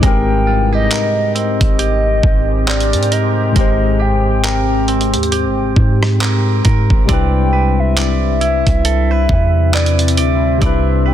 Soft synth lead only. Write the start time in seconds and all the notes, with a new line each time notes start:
0.05 G5
0.75 D#5
1.37 D#5
2.69 D5
3.13 D#5
3.58 D#5
4.01 G5
7.10 G5
7.80 E5
8.42 E5
9.74 D5
10.19 E5
10.64 E5
11.07 G5